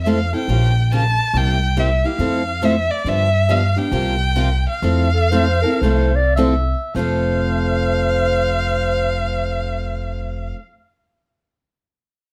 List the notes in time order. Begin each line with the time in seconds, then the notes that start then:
Already playing: F2
0.03 F3 A3 C4 E4 A4 E5
0.08 F5
0.33 C4 E4 A4 G5
0.48 A#1 C#3 F3 A#3 F4 G4
0.92 C#3 F3 A#3 F4 G4 A5
1.34 C2 C3 G3 A#3 E4 G4 G5
1.77 C3 G3 A#3 E4 G4 E5
2.04 A#3 E4 G4 F5
2.19 F2 F3 A3 C4 E4 A4
2.62 F3 A3 C4 E4 A4 E5
2.91 D5
3.04 G2 D3 F3 B3 D4 G4
3.08 E5
3.49 D3 F3 B3 D4 G4 F5
3.76 B3 D4 G4 G5
3.91 C2 C3 F3 A#3 F4 G4
4.36 C3 F3 A#3 F4 G4
4.69 F5
4.82 F2 F3 A3 C4 E4 A4
5.14 A4
5.31 F3 A3 C4 E4 A4 C5
5.62 C4 E4 A4 A#4
5.82 C2 F3 A3 C4 E4 A4 C5
6.16 D5
6.36 F3 A3 C4 E4 A4 E5
6.95 F1 F3 A3 C4 C5 F5
6.99 A4